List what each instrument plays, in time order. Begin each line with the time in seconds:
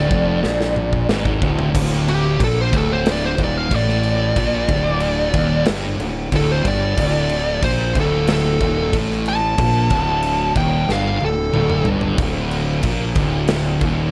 Already playing: distorted electric guitar D2, lead electric guitar D5
0.11 fingered electric bass F1, distorted electric guitar F2, kick
0.44 fingered electric bass A#1, distorted electric guitar A#2, snare
0.61 snare
0.76 mid tom
0.93 kick
1.09 fingered electric bass G#1, distorted electric guitar G#2, snare
1.25 kick
1.42 fingered electric bass D1, distorted electric guitar D2, kick
1.59 floor tom
1.74 fingered electric bass D1, distorted electric guitar D2, kick, crash
2.08 lead electric guitar G4, crash
2.39 fingered electric bass A#1, distorted electric guitar A#2, kick, crash
2.44 lead electric guitar A4
2.61 lead electric guitar C5
2.72 fingered electric bass D1, distorted electric guitar D2, kick, crash
2.77 lead electric guitar A4
2.93 lead electric guitar C5
3.06 snare, crash
3.12 lead electric guitar D5
3.25 lead electric guitar C5
3.36 fingered electric bass D#1, distorted electric guitar D#2, kick, crash
3.44 lead electric guitar D5
3.58 lead electric guitar F5
3.71 fingered electric bass A1, distorted electric guitar A2, kick, crash
3.76 lead electric guitar D5
3.89 snare
4.03 crash
4.36 fingered electric bass A#1, distorted electric guitar A#2, kick, crash
4.68 fingered electric bass D1, distorted electric guitar D2, kick, crash
5.00 crash
5.33 fingered electric bass D#1, distorted electric guitar D#2, kick, crash
5.65 fingered electric bass G1, distorted electric guitar G2, snare, crash
5.99 fingered electric bass D1, distorted electric guitar D2, crash
6.32 fingered electric bass D1, distorted electric guitar D2, lead electric guitar A4, kick, crash
6.52 lead electric guitar C5
6.64 fingered electric bass G1, distorted electric guitar G2, lead electric guitar D5, kick, crash
6.97 fingered electric bass D1, distorted electric guitar D2, kick, crash
7.29 crash
7.62 fingered electric bass A#1, distorted electric guitar A#2, lead electric guitar C5, kick, crash
7.95 fingered electric bass D1, distorted electric guitar D2, kick, crash
8.00 lead electric guitar A4
8.27 snare, crash
8.33 lead electric guitar A4
8.60 fingered electric bass D#1, distorted electric guitar D#2, kick, crash
8.92 fingered electric bass A1, distorted electric guitar A2, kick, crash
9.10 snare
9.26 lead electric guitar A5, crash
9.58 fingered electric bass A#1, distorted electric guitar A#2, kick, crash
9.90 fingered electric bass D1, distorted electric guitar D2, kick, crash
10.23 crash
10.55 fingered electric bass D#1, distorted electric guitar D#2, lead electric guitar G5, kick, crash
10.87 fingered electric bass G1, distorted electric guitar G2, snare
10.92 lead electric guitar F5
11.20 fingered electric bass D1, distorted electric guitar D2, high tom
11.25 lead electric guitar A4
11.53 fingered electric bass D1, distorted electric guitar D2, mid tom
11.70 mid tom
11.85 fingered electric bass G1, distorted electric guitar G2, floor tom
12.01 floor tom
12.18 fingered electric bass D1, distorted electric guitar D2, kick, crash
12.51 crash
12.82 fingered electric bass A#1, distorted electric guitar A#2, kick, crash
13.15 fingered electric bass D1, distorted electric guitar D2, kick, crash
13.48 snare, crash
13.81 fingered electric bass D#1, distorted electric guitar D#2, kick, crash